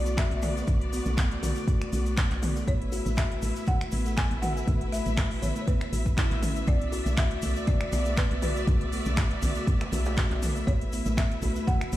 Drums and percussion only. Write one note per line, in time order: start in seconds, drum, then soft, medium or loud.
0.06 closed hi-hat soft
0.06 shaker medium
0.18 finger snap loud
0.18 kick loud
0.18 clap loud
0.18 closed hi-hat medium
0.18 shaker soft
0.31 closed hi-hat soft
0.42 open hi-hat medium
0.42 mid tom loud
0.42 shaker medium
0.57 shaker soft
0.67 kick loud
0.67 closed hi-hat medium
0.67 mid tom medium
0.67 shaker soft
0.81 closed hi-hat soft
0.93 open hi-hat medium
0.93 shaker medium
1.06 closed hi-hat soft
1.06 shaker medium
1.18 finger snap loud
1.18 kick loud
1.18 clap loud
1.18 closed hi-hat medium
1.18 shaker soft
1.31 closed hi-hat soft
1.43 open hi-hat medium
1.43 mid tom medium
1.43 shaker medium
1.56 shaker soft
1.68 kick loud
1.68 closed hi-hat medium
1.68 shaker soft
1.82 finger snap medium
1.82 closed hi-hat soft
1.92 open hi-hat medium
1.92 shaker medium
2.06 closed hi-hat soft
2.06 shaker soft
2.17 finger snap loud
2.17 kick loud
2.17 clap loud
2.17 closed hi-hat medium
2.17 shaker soft
2.31 clap soft
2.31 closed hi-hat soft
2.43 open hi-hat medium
2.43 mid tom loud
2.43 shaker loud
2.56 shaker soft
2.67 kick loud
2.67 closed hi-hat medium
2.67 shaker soft
2.82 closed hi-hat soft
2.92 open hi-hat medium
2.92 shaker medium
3.06 closed hi-hat soft
3.06 shaker soft
3.16 finger snap loud
3.16 kick loud
3.16 clap loud
3.16 closed hi-hat medium
3.16 shaker soft
3.31 closed hi-hat soft
3.42 open hi-hat medium
3.42 shaker medium
3.56 shaker soft
3.66 kick loud
3.66 closed hi-hat medium
3.66 mid tom medium
3.66 shaker soft
3.81 finger snap medium
3.81 closed hi-hat soft
3.92 open hi-hat medium
3.92 shaker medium
4.06 closed hi-hat soft
4.06 shaker medium
4.17 finger snap loud
4.17 kick loud
4.17 clap loud
4.17 closed hi-hat medium
4.17 shaker soft
4.31 closed hi-hat soft
4.43 open hi-hat medium
4.43 mid tom loud
4.43 shaker medium
4.57 shaker soft
4.67 kick loud
4.67 closed hi-hat medium
4.67 mid tom medium
4.67 shaker soft
4.81 closed hi-hat soft
4.92 open hi-hat medium
4.92 shaker medium
5.06 closed hi-hat soft
5.06 shaker medium
5.17 finger snap loud
5.17 kick loud
5.17 clap loud
5.17 closed hi-hat medium
5.17 shaker soft
5.31 open hi-hat medium
5.42 open hi-hat medium
5.42 mid tom medium
5.42 shaker medium
5.56 closed hi-hat soft
5.56 shaker soft
5.67 kick loud
5.67 closed hi-hat medium
5.67 shaker soft
5.81 finger snap medium
5.81 closed hi-hat soft
5.93 open hi-hat medium
5.93 shaker medium
6.06 kick medium
6.06 closed hi-hat soft
6.06 shaker soft
6.18 finger snap loud
6.18 kick loud
6.18 clap loud
6.18 closed hi-hat medium
6.18 shaker soft
6.31 clap soft
6.31 closed hi-hat soft
6.43 open hi-hat loud
6.43 mid tom loud
6.43 shaker loud
6.56 closed hi-hat soft
6.56 shaker medium
6.67 kick loud
6.67 closed hi-hat medium
6.67 djembe slap medium
6.67 djembe bass medium
6.67 shaker soft
6.81 closed hi-hat soft
6.92 open hi-hat medium
6.92 shaker medium
7.06 closed hi-hat soft
7.06 djembe tone medium
7.06 shaker medium
7.17 finger snap loud
7.17 kick loud
7.17 clap loud
7.17 closed hi-hat medium
7.17 shaker soft
7.31 closed hi-hat soft
7.42 open hi-hat loud
7.42 djembe bass medium
7.42 shaker medium
7.56 shaker medium
7.67 kick loud
7.67 closed hi-hat medium
7.67 mid tom medium
7.67 shaker soft
7.81 finger snap medium
7.81 closed hi-hat soft
7.92 open hi-hat loud
7.92 djembe tone medium
7.92 shaker medium
8.05 closed hi-hat soft
8.05 shaker soft
8.17 finger snap loud
8.17 kick loud
8.17 clap loud
8.17 closed hi-hat medium
8.17 shaker soft
8.31 closed hi-hat soft
8.31 djembe tone medium
8.42 open hi-hat loud
8.42 mid tom loud
8.42 djembe slap medium
8.42 shaker medium
8.57 shaker medium
8.67 kick loud
8.67 closed hi-hat medium
8.67 mid tom medium
8.67 djembe slap medium
8.67 djembe tone medium
8.67 djembe bass medium
8.67 shaker soft
8.81 closed hi-hat soft
8.92 open hi-hat medium
8.92 shaker medium
9.06 closed hi-hat soft
9.06 djembe tone medium
9.06 shaker medium
9.17 finger snap loud
9.17 kick loud
9.17 clap loud
9.17 closed hi-hat medium
9.17 shaker soft
9.31 closed hi-hat soft
9.42 open hi-hat medium
9.42 mid tom medium
9.42 djembe bass loud
9.42 shaker medium
9.55 shaker medium
9.67 kick loud
9.67 closed hi-hat medium
9.67 shaker soft
9.81 finger snap medium
9.81 closed hi-hat soft
9.81 djembe slap medium
9.92 open hi-hat loud
9.92 djembe tone medium
9.92 shaker medium
10.05 closed hi-hat soft
10.05 djembe slap medium
10.05 shaker medium
10.17 finger snap loud
10.17 kick loud
10.17 clap loud
10.17 closed hi-hat medium
10.17 shaker soft
10.31 clap soft
10.31 closed hi-hat soft
10.31 djembe slap medium
10.42 open hi-hat loud
10.42 mid tom loud
10.42 djembe tone medium
10.42 shaker loud
10.56 shaker medium
10.67 kick loud
10.67 closed hi-hat medium
10.67 djembe slap medium
10.67 djembe bass medium
10.67 shaker soft
10.81 closed hi-hat soft
10.92 open hi-hat medium
10.92 shaker medium
11.05 closed hi-hat soft
11.05 djembe tone medium
11.05 shaker medium
11.18 finger snap loud
11.18 kick loud
11.18 clap medium
11.18 closed hi-hat medium
11.18 shaker soft
11.31 closed hi-hat soft
11.42 open hi-hat medium
11.42 djembe bass loud
11.42 shaker medium
11.56 shaker medium
11.67 kick loud
11.67 closed hi-hat medium
11.67 mid tom medium
11.67 shaker soft
11.81 finger snap medium
11.81 closed hi-hat soft
11.92 open hi-hat loud
11.92 djembe tone medium
11.92 shaker loud